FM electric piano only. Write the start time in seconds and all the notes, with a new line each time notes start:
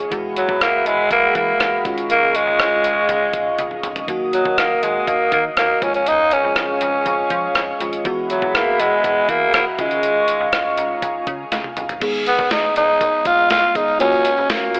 0.10 B2 E3 G#3 F#4
1.84 D#3 G#3 C#4 F4
4.07 D#3 F#3 A#3 F#4
5.81 D#3 G#3 C#4 F4
7.80 D#3 G#3 C#4 F4
8.04 E3 G#3 B3 F#4
9.78 D#3 G#3 C#4 F4
10.78 A#5
11.03 G#5
11.52 F5
12.00 D#3 G#3 B3 G#4
13.75 D#3 G#3 B3 G#4
13.99 A#3 C#4 F4 F#4